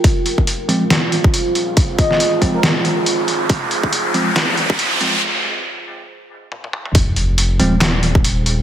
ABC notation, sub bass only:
X:1
M:4/4
L:1/8
Q:"Swing 16ths" 1/4=139
K:Fm
V:1 name="Sub bass" clef=bass
F,,,3 E,,,4- E,,,- | E,,, A,,,6 A,,, | F,,,3 E,,,4- E,,, | z8 |
F,,,3 E,,,4- E,,, |]